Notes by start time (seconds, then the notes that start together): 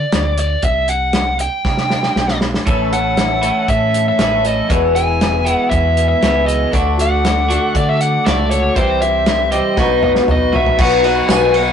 Already playing: D5
0.12 D2, snare, closed hi-hat
0.38 D5, closed hi-hat
0.62 C2 E5, kick, closed hi-hat
0.88 F#5, closed hi-hat
1.13 snare, closed hi-hat
1.39 G5, closed hi-hat
1.65 C3, kick, snare
1.78 snare
1.90 snare
2.03 snare
2.16 B1, snare
2.28 snare
2.41 snare
2.54 snare
2.66 A1 A2 E3 A3 C#4 E4 A4 C#5 A5 E6, kick, closed hi-hat
2.92 A3 C#4 A4 F#5, closed hi-hat
3.17 E3 A3 C#4 A4, snare, closed hi-hat
3.42 A2 E3 A3 C#4 E4 A4, closed hi-hat
3.68 A2 E5, kick, closed hi-hat
3.94 closed hi-hat
4.08 E5
4.18 A1 A2 E3 A3 C#4 E4 A4, snare, closed hi-hat
4.44 A3 C#4 A4 D#5, closed hi-hat
4.69 E1 E2 B2 E3 G#3 B3 E4 G#4 B4 G#5, kick, closed hi-hat
4.95 E3 G#3 B3 G#4 G#5, closed hi-hat
5.19 E3 G#3 B3 G#4, snare, closed hi-hat
5.45 E2 B2 E3 G#3 B3 E4 G#4, closed hi-hat
5.53 F#5
5.70 E2 E5, kick, closed hi-hat
5.97 closed hi-hat
6.08 E5
6.21 C#2 E2 B2 E3 G#3 B3 E4 G#4, snare, closed hi-hat
6.46 E3 G#3 B3 G#4 D#5, closed hi-hat
6.72 D2 D3 A3 D4 F#4 A4 F#5 D6, kick, closed hi-hat
6.97 A3 D4 F#4 F#5, closed hi-hat
7.24 D3 A3 D4 F#4, snare, closed hi-hat
7.50 D3 A3 D4 F#4, closed hi-hat
7.75 D3 D5, kick, closed hi-hat
7.89 E5
8.01 F#5, closed hi-hat
8.26 C#2 D3 A3 D4 F#4 D5, snare, closed hi-hat
8.50 A3 D4 F#4 C#5, closed hi-hat
8.76 C2 C3 E3 G3 C4 G4 C5 E5 C6, kick, closed hi-hat
9.02 G3 C4 G4 E5, closed hi-hat
9.26 E3 G3 C4 G4, snare, closed hi-hat
9.52 C3 E3 G3 C4 G4 D#5, closed hi-hat
9.76 B1 B2 F#3 B3 D#4 F#4 D#5 B5, kick, snare
10.03 D#5, mid tom
10.15 snare
10.28 B1 F#3 B3 D#4 F#4 D#5, mid tom
10.53 B2 F#3 B3 D#4 F#4 E5, floor tom
10.66 floor tom
10.77 B1 B2 F#3 B3 D#4 F#4 D#5 B5, kick, crash
10.81 F#5
11.04 B3 D#4 F#4 F#5, ride
11.29 B1 B2 F#3 B3 D#4 F#4 G#5, snare, ride, tambourine
11.53 D#4 F#4 F#5, ride
11.57 B3